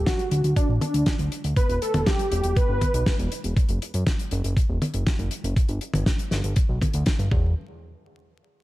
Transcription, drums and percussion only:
0.06 kick, snare, closed hi-hat
0.19 closed hi-hat
0.31 closed hi-hat
0.44 closed hi-hat
0.56 kick, closed hi-hat
0.81 closed hi-hat, high tom
0.94 closed hi-hat
1.06 kick, snare, closed hi-hat
1.19 closed hi-hat
1.32 closed hi-hat
1.44 closed hi-hat
1.56 kick, closed hi-hat
1.70 closed hi-hat
1.82 closed hi-hat
1.94 closed hi-hat, high tom
2.07 kick, snare, closed hi-hat
2.19 closed hi-hat
2.32 closed hi-hat
2.44 closed hi-hat
2.57 kick, closed hi-hat
2.81 kick, closed hi-hat, high tom
2.94 closed hi-hat
3.06 kick, snare, closed hi-hat
3.19 closed hi-hat
3.32 closed hi-hat
3.44 closed hi-hat
3.57 kick, closed hi-hat
3.69 closed hi-hat
3.82 closed hi-hat
3.94 closed hi-hat
4.07 kick, snare, closed hi-hat
4.19 closed hi-hat
4.31 closed hi-hat
4.44 closed hi-hat
4.57 kick, closed hi-hat
4.82 closed hi-hat, high tom
4.94 closed hi-hat
5.07 kick, snare, closed hi-hat
5.19 closed hi-hat
5.31 closed hi-hat
5.44 closed hi-hat
5.57 kick, closed hi-hat
5.69 closed hi-hat
5.81 closed hi-hat
5.94 closed hi-hat, high tom
6.06 kick, snare, closed hi-hat
6.19 closed hi-hat
6.31 snare, closed hi-hat
6.44 closed hi-hat
6.56 kick, closed hi-hat
6.81 kick, closed hi-hat, high tom
6.94 closed hi-hat
7.06 kick, snare, closed hi-hat
7.19 closed hi-hat
7.32 kick

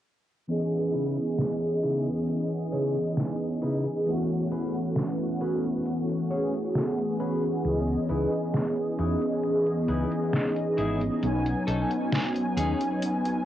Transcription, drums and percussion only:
0.49 closed hi-hat
0.72 closed hi-hat
0.94 closed hi-hat
1.17 closed hi-hat
1.39 snare, closed hi-hat
1.62 closed hi-hat
1.83 closed hi-hat
2.07 closed hi-hat
2.28 closed hi-hat
2.51 closed hi-hat
2.73 closed hi-hat
2.96 closed hi-hat
3.17 snare, closed hi-hat
3.40 closed hi-hat
3.62 closed hi-hat
3.85 closed hi-hat
4.07 closed hi-hat
4.30 closed hi-hat
4.51 closed hi-hat
4.74 closed hi-hat
4.96 snare, closed hi-hat
5.19 closed hi-hat
5.41 closed hi-hat
5.64 closed hi-hat
5.86 closed hi-hat
6.09 closed hi-hat
6.31 closed hi-hat
6.54 closed hi-hat
6.75 snare, closed hi-hat
6.99 closed hi-hat
7.20 closed hi-hat
7.43 closed hi-hat
7.65 closed hi-hat
7.88 closed hi-hat
8.09 closed hi-hat
8.32 closed hi-hat
8.54 snare, closed hi-hat
8.77 closed hi-hat
8.99 closed hi-hat
9.22 closed hi-hat
9.44 closed hi-hat
9.67 closed hi-hat
9.89 closed hi-hat
10.12 closed hi-hat
10.33 snare, closed hi-hat
10.56 closed hi-hat
10.78 closed hi-hat
11.01 closed hi-hat
11.23 closed hi-hat
11.46 closed hi-hat
11.68 closed hi-hat
11.91 closed hi-hat
12.12 snare, closed hi-hat
12.36 closed hi-hat
12.57 closed hi-hat
12.81 closed hi-hat
13.02 closed hi-hat
13.25 closed hi-hat

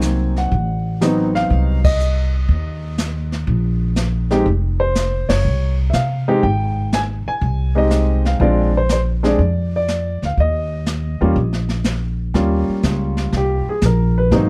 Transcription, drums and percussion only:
0.02 snare, hi-hat pedal
0.36 snare
0.52 brush sweep, kick
1.01 snare, hi-hat pedal
1.36 snare
1.50 brush sweep, kick
1.84 kick, ride
1.99 hi-hat pedal
2.49 brush sweep, kick
2.98 snare, hi-hat pedal
3.32 snare
3.47 brush sweep, kick
3.96 snare, hi-hat pedal
4.31 snare
4.46 brush sweep, kick
4.95 snare, hi-hat pedal
5.29 snare, ride
5.44 brush sweep
5.93 snare, hi-hat pedal
6.43 brush sweep, kick
6.93 snare, hi-hat pedal
7.42 brush sweep, kick
7.91 snare, hi-hat pedal
8.25 snare
8.40 brush sweep, kick
8.89 snare, hi-hat pedal
9.24 snare
9.39 brush sweep, kick
9.88 snare, hi-hat pedal
10.23 snare
10.37 brush sweep, kick
10.86 snare, hi-hat pedal
11.36 brush sweep, kick
11.53 snare
11.69 snare
11.84 snare, hi-hat pedal
12.34 brush sweep, kick, snare
12.83 kick, snare, hi-hat pedal
13.17 snare
13.32 brush sweep, kick, snare
13.82 kick, snare, hi-hat pedal
14.31 brush sweep, kick, snare

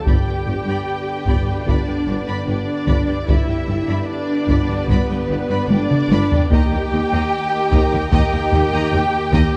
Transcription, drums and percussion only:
0.07 taiko
1.28 taiko
1.68 taiko
2.88 taiko
3.28 taiko
4.49 taiko
4.90 taiko
5.70 taiko high
5.91 taiko mid
6.12 taiko high
6.32 taiko low
6.52 taiko
7.72 taiko
7.93 taiko low
8.13 taiko
8.33 taiko low
8.52 taiko low
8.93 taiko low
9.34 taiko

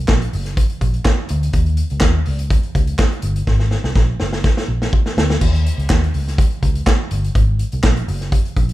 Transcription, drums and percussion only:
0.08 kick, snare, clap
0.22 closed hi-hat
0.33 open hi-hat
0.45 snare, closed hi-hat
0.57 kick, closed hi-hat
0.70 closed hi-hat
0.81 kick, closed hi-hat
0.94 closed hi-hat
1.05 kick, snare, clap
1.29 closed hi-hat
1.43 closed hi-hat
1.53 kick, closed hi-hat
1.66 closed hi-hat
1.77 closed hi-hat
1.90 closed hi-hat
2.00 kick, snare, clap
2.26 open hi-hat
2.39 closed hi-hat
2.50 kick, closed hi-hat
2.63 closed hi-hat
2.75 kick, closed hi-hat
2.87 closed hi-hat
2.98 kick, snare, clap
3.12 closed hi-hat
3.22 closed hi-hat
3.36 closed hi-hat
3.47 kick, snare
3.60 snare
3.71 snare
3.84 snare
3.95 kick, snare
4.20 snare
4.33 snare
4.44 kick, snare
4.57 snare
4.82 snare
4.93 kick
5.06 snare
5.18 snare
5.30 snare
5.41 kick, crash
5.55 closed hi-hat
5.66 closed hi-hat
5.79 closed hi-hat
5.90 kick, snare, clap
6.04 closed hi-hat
6.14 open hi-hat
6.28 snare, closed hi-hat
6.38 kick, closed hi-hat
6.51 closed hi-hat
6.63 kick, closed hi-hat
6.75 closed hi-hat
6.87 kick, snare, clap
7.11 closed hi-hat
7.24 closed hi-hat
7.35 kick, closed hi-hat
7.59 closed hi-hat
7.72 closed hi-hat
7.83 kick, snare, clap
7.97 closed hi-hat
8.08 open hi-hat
8.21 snare, closed hi-hat
8.32 kick, closed hi-hat
8.45 closed hi-hat
8.56 kick, closed hi-hat
8.69 closed hi-hat

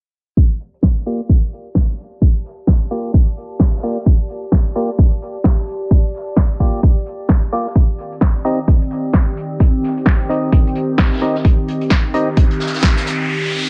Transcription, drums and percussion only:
0.37 kick, closed hi-hat
0.60 closed hi-hat
0.74 closed hi-hat
0.83 kick, snare
1.06 closed hi-hat
1.29 kick, closed hi-hat
1.44 closed hi-hat
1.53 closed hi-hat
1.75 kick, snare, closed hi-hat
1.99 closed hi-hat
2.21 kick, closed hi-hat
2.45 snare, closed hi-hat
2.59 closed hi-hat
2.67 kick, snare, closed hi-hat
2.81 closed hi-hat
2.91 closed hi-hat
3.14 kick, closed hi-hat
3.28 closed hi-hat
3.37 closed hi-hat
3.60 kick, snare, closed hi-hat
3.66 snare, closed hi-hat
3.74 snare, closed hi-hat
3.78 snare, closed hi-hat
3.83 closed hi-hat
3.97 snare
4.06 kick, closed hi-hat
4.29 closed hi-hat
4.43 closed hi-hat
4.52 kick, snare, closed hi-hat
4.76 closed hi-hat
4.98 kick, closed hi-hat
5.12 closed hi-hat
5.22 closed hi-hat
5.44 kick, snare, closed hi-hat
5.68 closed hi-hat
5.91 kick, closed hi-hat
6.14 snare, closed hi-hat
6.28 closed hi-hat
6.36 kick, snare, closed hi-hat
6.51 closed hi-hat
6.60 kick, closed hi-hat
6.83 kick, closed hi-hat
6.98 closed hi-hat
7.06 closed hi-hat
7.29 kick, snare, closed hi-hat
7.52 closed hi-hat
7.66 snare
7.76 kick, closed hi-hat
7.98 closed hi-hat
8.12 closed hi-hat
8.21 kick, snare, closed hi-hat
8.45 closed hi-hat
8.68 kick, closed hi-hat
8.82 closed hi-hat
8.91 closed hi-hat
9.13 kick, snare, closed hi-hat
9.37 closed hi-hat
9.60 kick, closed hi-hat
9.83 snare, closed hi-hat
9.97 closed hi-hat
10.06 kick, snare, closed hi-hat
10.20 closed hi-hat
10.30 closed hi-hat
10.52 kick, closed hi-hat
10.67 closed hi-hat
10.75 closed hi-hat
10.98 kick, snare, closed hi-hat
11.05 snare, closed hi-hat
11.12 snare, closed hi-hat
11.17 snare, closed hi-hat
11.21 closed hi-hat
11.35 snare
11.45 kick, closed hi-hat
11.68 closed hi-hat
11.81 closed hi-hat
11.90 kick, snare, closed hi-hat
12.14 closed hi-hat
12.37 kick, closed hi-hat
12.51 closed hi-hat
12.60 snare, closed hi-hat
12.66 snare, closed hi-hat
12.74 snare, closed hi-hat
12.79 snare, closed hi-hat
12.83 kick, snare, closed hi-hat
12.97 snare, closed hi-hat
13.06 snare, closed hi-hat

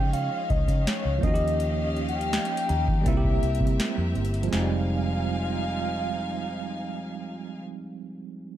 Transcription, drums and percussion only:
0.13 closed hi-hat
0.50 kick, closed hi-hat
0.68 kick, closed hi-hat
0.87 snare
1.23 kick, closed hi-hat
1.35 closed hi-hat
1.48 closed hi-hat
1.60 closed hi-hat
1.96 closed hi-hat
2.09 closed hi-hat
2.21 closed hi-hat
2.33 snare, closed hi-hat
2.45 closed hi-hat
2.57 closed hi-hat
2.69 closed hi-hat
2.88 kick
3.06 kick, closed hi-hat
3.25 kick
3.43 closed hi-hat
3.55 closed hi-hat
3.61 kick
3.67 closed hi-hat
3.80 snare
4.15 closed hi-hat
4.25 closed hi-hat
4.34 closed hi-hat
4.43 closed hi-hat
4.53 snare

